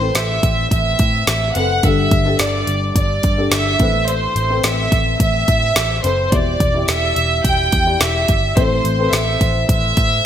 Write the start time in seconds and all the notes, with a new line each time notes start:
Already playing: A1 A2 E3 C5
0.00 C4 A4 B4
0.15 A1 E5, snare, closed hi-hat
0.43 A1, kick, closed hi-hat
0.71 A1 E5, kick, closed hi-hat
0.99 A2, kick, closed hi-hat
1.27 A1, snare, closed hi-hat
1.55 F#1 C4 A4 B4 F#5, closed hi-hat
1.83 G1 G2 D3 D4 G4 A4 E5, kick, closed hi-hat
2.11 G1, kick, closed hi-hat
2.25 D4 G4 A4
2.39 G1 D5, snare, closed hi-hat
2.67 G1, closed hi-hat
2.95 G1 D5, kick, closed hi-hat
3.23 G2, kick, closed hi-hat
3.37 D4 G4 A4
3.51 G1 E5, snare, closed hi-hat
3.79 A1 A2 E3 C4 A4 B4, kick, closed hi-hat
4.08 C5, closed hi-hat
4.36 A1, closed hi-hat
4.49 C4 A4 B4
4.64 A1 E5, snare, closed hi-hat
4.92 A1, kick, closed hi-hat
5.20 A1 E5, kick, closed hi-hat
5.48 A2, kick, closed hi-hat
5.76 A1, snare, closed hi-hat
6.04 F#1 C4 A4 B4 C5, closed hi-hat
6.32 E1 B2 E4 G4 D5, kick, closed hi-hat
6.60 E1, kick, closed hi-hat
6.74 E4 G4 D5
6.88 E1 E5, snare, closed hi-hat
7.16 E1, closed hi-hat
7.44 E1 G5, kick, closed hi-hat
7.72 E2, kick, closed hi-hat
7.86 E4 G4 D5
8.00 E1 E5, snare, closed hi-hat
8.28 G1, kick, closed hi-hat
8.56 A1 A2 E3 C4 A4 C5, kick, closed hi-hat
8.85 A1, closed hi-hat
8.98 C4 A4 B4
9.13 A1 E5, snare, closed hi-hat
9.41 A1, kick, closed hi-hat
9.69 A1 E5, kick, closed hi-hat
9.97 A2, kick, closed hi-hat